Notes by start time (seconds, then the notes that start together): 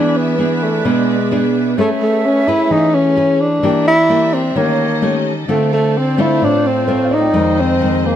Already playing: E3 B3 D4 G#4 B4 D5 E5
0.17 B3
0.39 B3 D4 G#4
0.63 A3
0.85 B2 G#3 B3 D4 G#4
1.31 B3 D4 G#4
1.78 A3 C#4 G#4 B4 C#5 E5
2.02 A3
2.26 C#4
2.47 C#4 E4 G#4 B4
2.70 E3 D#4 G#4
2.94 C#4
3.17 C#4 G#4 B4
3.41 D4
3.63 E3 A#3 D4 G4 A#4 D5 E5
3.88 E4
4.09 A#3 D4 G4
4.34 C4
4.55 D#3 A3 A#3 C#4 G4 A4 C#5 D#5
5.02 A3 C#4 G4
5.48 D3 A3 C4 F4 C5 D5
5.73 A3
5.98 C4
6.18 A3 C4 E4 F4
6.41 A2 D4
6.67 C4
6.87 A3 C4 F4 C5
7.04 F5
7.10 D#4 D5
7.21 G5
7.27 D5
7.33 F2 D#3 G#3 C4 G#4 C5 D#5
7.60 C4
7.81 D#3 G#3 C4
8.06 A#3